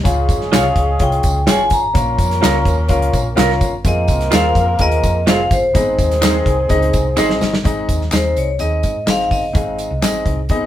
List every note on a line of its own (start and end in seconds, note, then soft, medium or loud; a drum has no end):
0.04 0.30 C#2 medium
0.04 0.72 C#3 medium
0.04 1.68 F3 medium
0.04 1.68 G#3 medium
0.04 0.40 C#4 medium
0.04 1.68 C#4 medium
0.04 0.40 F4 medium
0.04 0.40 G#4 medium
0.04 1.68 G#4 medium
0.04 0.41 F5 medium
0.04 kick loud
0.04 closed hi-hat medium
0.04 tambourine soft
0.29 0.55 G#1 medium
0.29 kick medium
0.29 closed hi-hat medium
0.29 tambourine soft
0.41 snare soft
0.52 0.74 C2 medium
0.52 0.87 C#4 medium
0.52 0.65 F4 medium
0.52 0.88 F4 medium
0.52 0.65 G#4 medium
0.52 0.88 G#4 medium
0.52 0.65 C#5 medium
0.52 0.88 F5 medium
0.52 snare loud
0.52 clap loud
0.52 closed hi-hat medium
0.52 tambourine loud
0.56 1.03 F5 medium
0.76 0.97 C#2 medium
0.76 kick medium
0.76 closed hi-hat medium
0.99 1.21 C2 loud
0.99 1.35 C#4 medium
0.99 1.35 F4 medium
0.99 1.35 G#4 medium
0.99 1.36 F5 medium
0.99 1.50 G5 loud
0.99 kick medium
0.99 closed hi-hat medium
1.12 closed hi-hat medium
1.23 1.44 C#2 medium
1.23 kick medium
1.23 closed hi-hat medium
1.23 tambourine medium
1.46 1.68 G1 medium
1.46 1.82 C#4 medium
1.46 1.60 F4 medium
1.46 1.82 F4 medium
1.46 1.83 G#4 medium
1.46 1.60 G#4 medium
1.46 1.60 C#5 medium
1.46 1.83 F5 medium
1.46 1.73 G#5 loud
1.46 snare loud
1.46 clap medium
1.46 closed hi-hat loud
1.46 tambourine medium
1.70 1.92 G#1 medium
1.70 2.63 A#5 loud
1.70 kick medium
1.70 closed hi-hat medium
1.70 tambourine medium
1.93 2.16 A#1 loud
1.93 2.62 A#2 medium
1.93 3.57 F3 medium
1.93 3.58 A#3 medium
1.93 2.29 C#4 medium
1.93 3.58 C#4 medium
1.93 2.30 F4 medium
1.93 2.30 A#4 medium
1.93 3.58 A#4 medium
1.93 2.30 F5 medium
1.93 kick loud
1.93 closed hi-hat medium
1.93 tambourine soft
2.18 2.39 F2 medium
2.18 kick medium
2.18 closed hi-hat medium
2.18 tambourine medium
2.31 snare soft
2.31 closed hi-hat medium
2.40 2.63 C#2 medium
2.40 2.77 C#4 medium
2.40 2.77 F4 medium
2.40 2.55 F4 medium
2.40 2.77 A#4 medium
2.40 2.55 A#4 medium
2.40 2.55 C#5 loud
2.40 2.77 F5 medium
2.40 snare loud
2.40 clap loud
2.40 closed hi-hat medium
2.40 tambourine loud
2.65 2.86 D#2 loud
2.65 kick medium
2.65 closed hi-hat medium
2.65 tambourine soft
2.88 3.10 C#2 medium
2.88 3.24 C#4 medium
2.88 3.25 F4 medium
2.88 3.25 A#4 medium
2.88 3.25 F5 loud
2.88 kick medium
2.88 closed hi-hat medium
2.88 tambourine soft
3.02 closed hi-hat medium
3.13 3.34 A#1 medium
3.13 kick medium
3.13 closed hi-hat medium
3.13 tambourine medium
3.35 3.58 C2 medium
3.35 3.72 C#4 loud
3.35 3.72 F4 medium
3.35 3.50 F4 medium
3.35 3.72 A#4 medium
3.35 3.50 A#4 loud
3.35 3.50 C#5 medium
3.35 3.73 F5 loud
3.35 snare loud
3.35 clap medium
3.35 closed hi-hat loud
3.35 tambourine medium
3.50 snare soft
3.61 3.82 G1 medium
3.61 kick medium
3.61 closed hi-hat medium
3.61 tambourine soft
3.84 4.05 F2 loud
3.84 5.47 F3 medium
3.84 5.48 A#3 medium
3.84 5.47 C4 medium
3.84 4.20 C4 medium
3.84 4.20 F4 medium
3.84 4.20 G#4 medium
3.84 5.48 A#4 medium
3.84 4.21 F5 medium
3.84 kick loud
3.84 closed hi-hat medium
3.84 tambourine soft
3.88 4.30 D#5 loud
4.08 4.29 C2 medium
4.08 kick medium
4.08 closed hi-hat medium
4.08 tambourine medium
4.21 snare soft
4.21 closed hi-hat medium
4.31 4.53 D#2 medium
4.31 4.67 C4 medium
4.31 4.44 F4 medium
4.31 4.67 F4 medium
4.31 4.44 G#4 medium
4.31 4.68 G#4 medium
4.31 4.45 C5 loud
4.31 4.68 F5 medium
4.31 4.82 F5 loud
4.31 snare loud
4.31 clap loud
4.31 closed hi-hat medium
4.31 tambourine medium
4.55 4.76 F2 medium
4.55 kick medium
4.55 closed hi-hat medium
4.55 tambourine soft
4.79 5.00 D#2 loud
4.79 5.14 C4 medium
4.79 5.15 F4 medium
4.79 5.15 G#4 medium
4.79 5.15 A#4 medium
4.79 5.30 D#5 loud
4.79 kick medium
4.79 closed hi-hat medium
4.92 closed hi-hat medium
5.03 5.24 F2 medium
5.03 kick medium
5.03 closed hi-hat medium
5.03 tambourine medium
5.26 5.48 F1 medium
5.26 5.62 C4 medium
5.26 5.39 F4 medium
5.26 5.62 F4 medium
5.26 5.40 G#4 loud
5.26 5.63 G#4 medium
5.26 5.40 C5 loud
5.26 5.63 F5 medium
5.26 5.50 F5 loud
5.26 snare loud
5.26 clap medium
5.26 closed hi-hat loud
5.26 tambourine medium
5.51 5.72 G1 medium
5.51 7.15 C5 medium
5.51 kick loud
5.51 closed hi-hat medium
5.51 tambourine medium
5.73 5.95 G#1 medium
5.73 6.42 G#2 medium
5.73 7.38 D#3 medium
5.73 7.38 G#3 medium
5.73 5.80 B3 medium
5.73 7.38 C4 medium
5.73 6.10 D#4 medium
5.73 6.10 G#4 medium
5.73 7.38 G#4 medium
5.73 6.10 D#5 medium
5.73 kick loud
5.73 closed hi-hat loud
5.73 tambourine soft
5.79 6.12 C4 medium
5.98 6.40 D#2 medium
5.98 kick medium
5.98 closed hi-hat medium
5.98 tambourine medium
6.11 snare soft
6.11 closed hi-hat medium
6.21 6.57 C4 medium
6.21 6.57 D#4 medium
6.21 6.34 D#4 medium
6.21 6.57 G#4 medium
6.21 6.35 G#4 medium
6.21 6.35 C5 medium
6.21 6.58 D#5 medium
6.21 snare loud
6.21 clap loud
6.21 closed hi-hat medium
6.21 tambourine loud
6.46 6.67 C2 medium
6.46 kick medium
6.46 closed hi-hat medium
6.69 6.90 C#2 loud
6.69 7.05 C4 medium
6.69 7.05 D#4 medium
6.69 7.05 G#4 medium
6.69 7.05 D#5 loud
6.69 kick medium
6.69 closed hi-hat medium
6.82 closed hi-hat medium
6.93 7.15 C2 medium
6.93 kick medium
6.93 closed hi-hat medium
6.93 tambourine medium
7.16 7.38 G#1 medium
7.16 7.52 C4 loud
7.16 7.29 D#4 medium
7.16 7.53 D#4 medium
7.16 7.30 G#4 medium
7.16 7.53 G#4 medium
7.16 7.30 C5 loud
7.16 7.53 D#5 loud
7.16 snare medium
7.16 clap medium
7.16 tambourine medium
7.30 snare medium
7.41 7.62 G1 medium
7.41 snare medium
7.41 tambourine medium
7.54 snare medium
7.63 7.86 G#1 loud
7.63 8.32 G#2 medium
7.63 8.00 C4 medium
7.63 8.00 D#4 medium
7.63 8.00 G#4 medium
7.63 8.01 D#5 loud
7.63 kick loud
7.63 closed hi-hat medium
7.63 tambourine soft
7.89 8.09 D#2 medium
7.89 kick medium
7.89 closed hi-hat medium
7.89 tambourine medium
8.01 snare soft
8.11 8.33 D#2 medium
8.11 8.47 C4 medium
8.11 8.47 D#4 medium
8.11 8.48 G#4 medium
8.11 8.35 C5 medium
8.11 8.48 D#5 medium
8.11 snare loud
8.11 clap medium
8.11 closed hi-hat medium
8.11 tambourine medium
8.36 8.57 C2 medium
8.36 8.48 C#5 medium
8.36 closed hi-hat medium
8.36 tambourine soft
8.59 8.81 D#2 medium
8.59 8.95 C4 medium
8.59 8.95 D#4 medium
8.59 8.96 G#4 medium
8.59 9.09 D#5 loud
8.59 8.96 D#5 medium
8.59 closed hi-hat medium
8.59 tambourine soft
8.83 9.05 G#2 medium
8.83 kick medium
8.83 closed hi-hat medium
8.83 tambourine medium
9.06 9.28 G#1 medium
9.06 9.42 C4 medium
9.06 9.42 D#4 medium
9.06 9.43 G#4 medium
9.06 9.43 C5 medium
9.06 snare loud
9.06 clap medium
9.06 closed hi-hat medium
9.06 tambourine medium
9.10 9.17 F5 loud
9.20 snare soft
9.24 9.31 F5 medium
9.31 9.52 G1 medium
9.31 10.23 D#5 medium
9.31 kick medium
9.31 open hi-hat soft
9.31 tambourine medium
9.53 9.86 G#1 loud
9.53 10.22 G#2 medium
9.53 9.90 C4 medium
9.53 9.90 D#4 medium
9.53 9.90 G#4 medium
9.53 9.90 F5 medium
9.53 kick loud
9.53 closed hi-hat medium
9.53 tambourine soft
9.79 closed hi-hat medium
9.79 tambourine medium
9.91 10.01 C2 medium
10.02 10.38 C4 medium
10.02 10.38 D#4 medium
10.02 10.38 G#4 medium
10.02 10.39 D#5 medium
10.02 snare loud
10.02 clap loud
10.02 closed hi-hat medium
10.02 tambourine loud
10.26 10.47 C2 medium
10.26 kick medium
10.26 closed hi-hat medium
10.49 10.66 G#1 medium
10.49 10.56 B3 medium
10.49 10.66 D#4 medium
10.49 10.66 G#4 medium
10.49 10.66 D#5 loud
10.49 kick medium
10.49 closed hi-hat medium
10.55 10.66 C4 medium